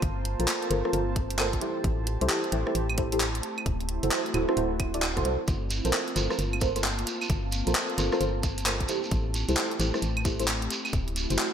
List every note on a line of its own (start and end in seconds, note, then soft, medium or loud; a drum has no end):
0.00 0.36 G1 loud
0.00 1.58 A#3 medium
0.00 1.62 A#3 medium
0.00 1.58 C4 medium
0.00 1.58 F4 medium
0.00 1.62 F4 medium
0.00 10.71 C5 medium
0.00 1.57 A5 medium
0.00 4.28 A5 medium
0.00 kick loud
0.00 closed hi-hat medium
0.25 closed hi-hat loud
0.40 0.47 A#1 medium
0.40 0.69 F4 medium
0.40 0.69 A4 medium
0.40 0.69 A#4 medium
0.40 0.69 C5 medium
0.40 closed hi-hat medium
0.48 clap loud
0.62 closed hi-hat soft
0.71 0.83 G1 medium
0.71 0.82 F4 medium
0.71 0.82 A4 medium
0.71 0.82 A#4 medium
0.71 0.82 C5 medium
0.71 closed hi-hat medium
0.85 0.92 F4 medium
0.85 0.92 A4 medium
0.85 0.92 A#4 medium
0.85 0.92 C5 loud
0.85 cross-stick medium
0.93 1.59 G1 medium
0.93 1.03 F4 medium
0.93 1.03 A4 medium
0.93 1.03 A#4 medium
0.93 1.03 C5 loud
0.93 closed hi-hat medium
1.16 kick loud
1.16 closed hi-hat loud
1.30 closed hi-hat medium
1.39 1.48 F4 medium
1.39 1.48 A4 medium
1.39 1.48 A#4 medium
1.39 1.48 C5 loud
1.39 clap loud
1.39 claves medium
1.53 kick medium
1.53 closed hi-hat medium
1.61 3.42 A3 medium
1.61 10.67 C4 medium
1.61 2.18 E4 medium
1.61 5.44 E4 medium
1.61 2.18 G4 medium
1.61 3.42 G4 medium
1.61 3.44 G4 medium
1.61 2.18 A4 medium
1.61 2.18 C5 medium
1.61 closed hi-hat medium
1.84 2.18 A1 loud
1.84 kick loud
1.84 closed hi-hat medium
2.07 closed hi-hat loud
2.21 2.28 C2 medium
2.21 2.50 E4 medium
2.21 2.50 G4 medium
2.21 2.50 A4 medium
2.21 2.50 C5 loud
2.21 closed hi-hat medium
2.29 clap loud
2.44 closed hi-hat soft
2.52 2.65 A1 medium
2.52 2.65 E4 medium
2.52 2.65 G4 medium
2.52 2.65 A4 medium
2.52 2.65 C5 medium
2.52 closed hi-hat medium
2.67 2.72 E4 medium
2.67 2.72 G4 medium
2.67 2.72 A4 medium
2.67 2.72 C5 medium
2.67 cross-stick medium
2.75 3.41 A1 medium
2.75 closed hi-hat medium
2.90 claves medium
2.98 3.07 E4 medium
2.98 3.07 G4 medium
2.98 3.07 A4 medium
2.98 3.07 C5 medium
2.98 kick loud
2.98 closed hi-hat loud
3.12 3.18 E4 medium
3.12 3.18 G4 medium
3.12 3.18 A4 medium
3.12 3.18 C5 loud
3.12 closed hi-hat medium
3.20 clap loud
3.35 closed hi-hat soft
3.43 5.46 A3 medium
3.43 5.48 E4 medium
3.43 5.46 F#4 medium
3.43 closed hi-hat medium
3.58 claves medium
3.66 4.00 D1 loud
3.66 kick loud
3.66 closed hi-hat medium
3.80 closed hi-hat soft
3.89 closed hi-hat loud
4.03 4.10 F#1 medium
4.03 4.32 E4 medium
4.03 4.32 F#4 medium
4.03 4.32 A4 medium
4.03 4.32 C5 medium
4.03 closed hi-hat medium
4.11 clap loud
4.23 5.48 F#5 medium
4.23 closed hi-hat soft
4.34 4.46 D1 medium
4.34 4.45 E4 medium
4.34 4.45 F#4 medium
4.34 4.45 A4 medium
4.34 4.45 C5 medium
4.34 closed hi-hat medium
4.34 claves medium
4.49 4.56 E4 medium
4.49 4.56 F#4 medium
4.49 4.56 A4 medium
4.49 4.56 C5 loud
4.49 cross-stick medium
4.57 5.16 D1 medium
4.57 4.66 E4 medium
4.57 4.66 F#4 medium
4.57 4.66 A4 medium
4.57 4.66 C5 loud
4.57 closed hi-hat medium
4.80 kick loud
4.80 closed hi-hat loud
4.80 claves medium
4.94 5.03 E4 medium
4.94 5.03 F#4 medium
4.94 5.03 A4 medium
4.94 5.03 D5 medium
4.94 closed hi-hat medium
5.02 clap loud
5.02 claves medium
5.17 5.24 F#1 medium
5.17 5.23 E4 medium
5.17 5.23 F#4 medium
5.17 5.23 A4 medium
5.17 5.23 C5 loud
5.17 kick medium
5.17 cross-stick medium
5.17 closed hi-hat medium
5.25 5.37 C2 medium
5.25 5.35 E4 medium
5.25 5.35 F#4 medium
5.25 5.35 A4 medium
5.25 5.35 C5 medium
5.25 closed hi-hat loud
5.48 5.81 G1 loud
5.48 8.85 A#3 medium
5.48 8.85 F4 medium
5.48 8.89 F4 medium
5.48 8.85 A5 medium
5.48 kick loud
5.48 closed hi-hat medium
5.48 shekere soft
5.70 8.89 A#3 medium
5.70 closed hi-hat loud
5.70 shekere medium
5.85 5.92 A#1 medium
5.85 6.14 F4 medium
5.85 6.14 A4 medium
5.85 6.14 A#4 medium
5.85 6.14 C5 medium
5.85 closed hi-hat medium
5.85 shekere medium
5.93 clap loud
5.93 shekere soft
6.08 closed hi-hat soft
6.16 6.28 G1 medium
6.16 6.28 F4 medium
6.16 6.28 A4 medium
6.16 6.28 A#4 medium
6.16 6.28 C5 medium
6.16 11.53 A5 medium
6.16 closed hi-hat loud
6.16 shekere loud
6.30 6.36 F4 medium
6.30 6.36 A4 medium
6.30 6.36 A#4 medium
6.30 6.36 C5 medium
6.30 cross-stick medium
6.30 shekere medium
6.39 7.05 G1 medium
6.39 closed hi-hat medium
6.39 shekere soft
6.53 claves medium
6.61 6.71 F4 medium
6.61 6.71 A4 medium
6.61 6.71 A#4 medium
6.61 6.71 C5 medium
6.61 kick loud
6.61 closed hi-hat loud
6.61 shekere loud
6.76 6.81 F4 medium
6.76 6.81 A4 medium
6.76 6.81 A#4 medium
6.76 6.81 C5 loud
6.76 closed hi-hat medium
6.76 shekere medium
6.84 clap loud
6.84 shekere soft
6.99 closed hi-hat medium
7.07 closed hi-hat medium
7.07 shekere medium
7.21 claves medium
7.21 shekere medium
7.30 7.63 G1 loud
7.30 kick loud
7.30 closed hi-hat medium
7.52 closed hi-hat loud
7.52 shekere medium
7.67 7.74 A#1 medium
7.67 7.96 F4 medium
7.67 7.96 A4 medium
7.67 7.96 A#4 medium
7.67 7.96 C5 medium
7.67 closed hi-hat medium
7.67 shekere medium
7.75 clap loud
7.75 shekere soft
7.90 closed hi-hat soft
7.98 8.10 G1 medium
7.98 8.09 F4 medium
7.98 8.09 A4 medium
7.98 8.09 A#4 medium
7.98 8.09 C5 medium
7.98 closed hi-hat medium
7.98 shekere medium
8.12 8.19 F4 loud
8.12 8.19 A4 medium
8.12 8.19 A#4 medium
8.12 8.19 C5 loud
8.12 cross-stick medium
8.12 shekere medium
8.21 8.87 G1 medium
8.21 8.30 F4 medium
8.21 8.30 A4 medium
8.21 8.30 A#4 medium
8.21 8.30 C5 loud
8.21 closed hi-hat medium
8.21 shekere soft
8.43 kick loud
8.43 closed hi-hat loud
8.43 shekere medium
8.58 closed hi-hat medium
8.58 shekere medium
8.66 8.76 F4 medium
8.66 8.75 A4 medium
8.66 8.76 A#4 medium
8.66 8.76 C5 loud
8.66 clap loud
8.66 claves medium
8.66 shekere soft
8.81 kick medium
8.81 closed hi-hat medium
8.88 11.53 A3 medium
8.88 9.45 E4 medium
8.88 11.53 E4 medium
8.88 10.71 G4 medium
8.88 9.45 G4 medium
8.88 10.69 G4 medium
8.88 9.45 A4 medium
8.88 9.45 C5 medium
8.88 closed hi-hat medium
8.88 shekere loud
9.04 shekere soft
9.11 9.45 A1 loud
9.11 kick loud
9.11 closed hi-hat medium
9.11 shekere soft
9.34 closed hi-hat loud
9.34 shekere loud
9.49 9.56 C2 medium
9.49 9.78 E4 medium
9.49 9.78 G4 medium
9.49 9.78 A4 medium
9.49 9.78 C5 loud
9.49 closed hi-hat medium
9.49 shekere medium
9.57 clap loud
9.57 shekere soft
9.71 closed hi-hat soft
9.80 9.92 A1 medium
9.80 9.92 E4 medium
9.80 9.92 G4 medium
9.80 9.92 A4 medium
9.80 9.92 C5 medium
9.80 closed hi-hat medium
9.80 shekere loud
9.94 10.00 E4 medium
9.94 10.00 G4 medium
9.94 10.00 A4 medium
9.94 10.00 C5 loud
9.94 cross-stick medium
9.94 shekere medium
10.02 10.68 A1 medium
10.02 closed hi-hat medium
10.02 shekere soft
10.17 claves medium
10.25 10.35 E4 medium
10.25 10.35 G4 medium
10.25 10.35 A4 medium
10.25 10.35 C5 medium
10.25 kick loud
10.25 closed hi-hat loud
10.25 shekere loud
10.40 10.45 E4 medium
10.40 10.45 G4 medium
10.40 10.45 A4 medium
10.40 10.45 C5 loud
10.40 closed hi-hat medium
10.40 shekere medium
10.48 clap loud
10.48 shekere soft
10.62 closed hi-hat soft
10.70 11.53 C4 medium
10.70 11.53 E4 medium
10.70 11.53 F#4 medium
10.70 closed hi-hat medium
10.70 shekere loud
10.85 claves medium
10.85 shekere medium
10.93 11.27 D1 loud
10.93 kick loud
10.93 closed hi-hat medium
10.93 shekere soft
11.08 closed hi-hat soft
11.16 11.53 C5 medium
11.16 closed hi-hat loud
11.16 shekere medium
11.30 11.37 F#1 medium
11.30 11.53 E4 medium
11.30 11.53 F#4 medium
11.30 11.53 A4 medium
11.30 11.53 C5 medium
11.30 11.53 F#5 medium
11.30 closed hi-hat medium
11.30 shekere medium
11.39 clap loud
11.39 shekere soft